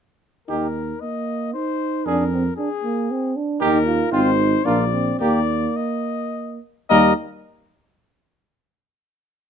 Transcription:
0.48 tuba D#2, french horn D#4, trumpet G4, cornet A#4
1.01 euphonium A#3, cornet D#5
1.54 euphonium D#4, cornet C5
2.06 tuba F2, euphonium D4, french horn D4, trumpet G#4, cornet A#4
2.33 euphonium C4
2.57 euphonium D4, cornet G#4
2.84 euphonium A#3
3.11 euphonium C4
3.36 euphonium D4
3.60 tuba D#2, euphonium D#4, french horn D#4, trumpet G4, cornet A#4
3.86 euphonium F4
4.12 tuba G#1, french horn C4, euphonium D#4, trumpet F4, cornet C5
4.65 tuba A#1, french horn A#3, euphonium D4, trumpet F4, cornet D5
4.93 euphonium C4
5.20 tuba D#2, french horn A#3, euphonium A#3, trumpet G4, cornet D5
5.76 cornet D#5
6.89 tuba D#2, euphonium G3, french horn A#3, trumpet A#4, cornet D#5

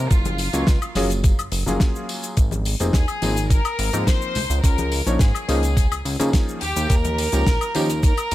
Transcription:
Already playing: electric grand piano A#4, violin section A#4
0.11 analog synth bass F#1, violin section F4, kick, closed hi-hat, tambourine, cabasa
0.25 closed hi-hat, high conga, cabasa
0.38 open hi-hat, tambourine
0.53 analog synth bass C#2, electric grand piano F#3 A#3 C#4 F4 C#5, closed hi-hat, tambourine, cabasa
0.67 analog synth bass C#2, kick, snare, closed hi-hat, tambourine, cabasa
0.82 closed hi-hat, cabasa, high woodblock
0.95 analog synth bass F#1, electric grand piano F#3 A#3 C#4 F4 G#4, snare, open hi-hat, tambourine, high conga
1.10 closed hi-hat, tambourine, cabasa
1.24 kick, closed hi-hat, tambourine, cabasa
1.38 analog synth bass F#1, closed hi-hat, cabasa, high woodblock
1.52 analog synth bass F#1, open hi-hat, tambourine
1.66 analog synth bass F#1, electric grand piano F#3 A#3 C#4 F4 G#4, closed hi-hat, tambourine, high conga, cabasa
1.80 kick, snare, closed hi-hat, tambourine, cabasa
1.96 cabasa
2.09 open hi-hat, tambourine
2.23 closed hi-hat, tambourine, cabasa
2.37 analog synth bass G#1, kick, closed hi-hat, tambourine, cabasa
2.51 closed hi-hat, high conga, cabasa
2.65 open hi-hat, tambourine
2.80 analog synth bass F1, electric grand piano F3 A#3 C4 D#4 G#4, closed hi-hat, tambourine, cabasa
2.93 analog synth bass D#2, violin section G#4, kick, snare, closed hi-hat, tambourine, cabasa
3.08 closed hi-hat, cabasa, high woodblock
3.22 analog synth bass G#1, electric grand piano F3 A#3 C4 D#4 G#4, open hi-hat, tambourine, high conga
3.36 closed hi-hat, tambourine, cabasa
3.50 violin section A#4, kick, closed hi-hat, tambourine, cabasa
3.65 closed hi-hat, cabasa, high woodblock
3.79 analog synth bass G#1, open hi-hat, tambourine
3.93 analog synth bass G#2, electric grand piano F3 A#3 C4 D#4 A#4, closed hi-hat, tambourine, high conga, cabasa
4.07 violin section C5, kick, snare, closed hi-hat, tambourine, cabasa
4.22 cabasa
4.35 analog synth bass C#2, open hi-hat, tambourine, low conga
4.50 analog synth bass C#2, closed hi-hat, tambourine, cabasa
4.64 analog synth bass C#2, violin section A#4, kick, closed hi-hat, tambourine, cabasa
4.78 closed hi-hat, high conga, cabasa
4.92 open hi-hat, tambourine
5.06 analog synth bass A#1, electric grand piano F3 A#3 C#4 D#4 C#5, closed hi-hat, tambourine, cabasa
5.19 analog synth bass G#2, violin section G#4, kick, snare, closed hi-hat, tambourine, cabasa
5.35 closed hi-hat, cabasa, high woodblock
5.48 analog synth bass C#2, electric grand piano F3 A#3 C#4 D#4 G#4, open hi-hat, tambourine, high conga
5.63 closed hi-hat, tambourine, cabasa
5.77 kick, closed hi-hat, tambourine, cabasa
5.92 analog synth bass C#2, closed hi-hat, cabasa, high woodblock
6.05 analog synth bass C#2, open hi-hat, tambourine
6.19 analog synth bass C#3, electric grand piano F3 A#3 C#4 D#4 G#4, closed hi-hat, tambourine, high conga, cabasa
6.33 kick, snare, closed hi-hat, tambourine, cabasa
6.49 cabasa
6.61 analog synth bass D#2, violin section G4, open hi-hat, tambourine
6.76 analog synth bass D#2, closed hi-hat, tambourine, cabasa
6.90 analog synth bass D#2, violin section A#4, kick, closed hi-hat, tambourine, cabasa
7.05 closed hi-hat, high conga, cabasa
7.18 open hi-hat, tambourine
7.32 analog synth bass C#2, electric grand piano F3 A#3 C#4 D#4 G4, closed hi-hat, tambourine, cabasa
7.46 analog synth bass A#1, kick, snare, closed hi-hat, tambourine, cabasa
7.61 closed hi-hat, cabasa, high woodblock
7.75 analog synth bass D#2, electric grand piano F3 A#3 C#4 D#4 G4, open hi-hat, tambourine, high conga
7.90 closed hi-hat, tambourine, cabasa
8.03 violin section A#4, kick, closed hi-hat, tambourine, cabasa
8.17 closed hi-hat, cabasa, high woodblock
8.31 open hi-hat, tambourine

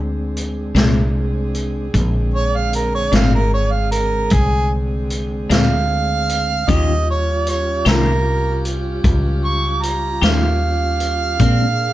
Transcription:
Already playing: fretless electric bass D2, tonewheel organ G#3 C4 D4, saxophone section C4 D4 G#4
0.37 closed hi-hat
0.75 fretless electric bass C2, clean electric guitar A#2 G#3 C4 D4, snare, closed hi-hat
1.55 closed hi-hat
1.94 fretless electric bass A#1, tonewheel organ D3 G#3 C4, kick, closed hi-hat
2.34 harmonica C#5
2.57 harmonica F5
2.73 harmonica A#4, closed hi-hat
2.95 harmonica C#5
3.12 fretless electric bass G#1, clean electric guitar A#2 G#3 C4 D4, harmonica F5, snare, closed hi-hat
3.35 harmonica A#4
3.54 harmonica C#5
3.71 harmonica F5
3.91 harmonica A#4, closed hi-hat
4.30 fretless electric bass C2, harmonica G#4, kick, closed hi-hat
5.10 closed hi-hat
5.50 fretless electric bass D2, clean electric guitar A#2 G#3 C4 D4, harmonica F5, snare, closed hi-hat
6.29 closed hi-hat
6.68 fretless electric bass D#2, clean electric guitar D#3 C#4 F4 G4, tonewheel organ G3 C#4 F4, saxophone section C#4 F4 G4, harmonica D#5, kick, closed hi-hat
7.11 harmonica C#5
7.47 harmonica C#5, closed hi-hat
7.85 fretless electric bass C2, clean electric guitar D#3 C#4 F4 G4, harmonica A#4, snare, closed hi-hat
8.65 closed hi-hat
9.04 fretless electric bass C#2, kick, closed hi-hat
9.45 harmonica C#6
9.83 harmonica A#5, closed hi-hat
10.22 fretless electric bass D#2, clean electric guitar D#3 C#4 F4 G4, harmonica F5, snare, closed hi-hat
11.00 closed hi-hat
11.37 clean electric guitar A#2 G#3 C4, fretless electric bass A#2, tonewheel organ A#3 D4 G#4, saxophone section A#3 D4 G#4, kick, closed hi-hat
11.41 clean electric guitar D4

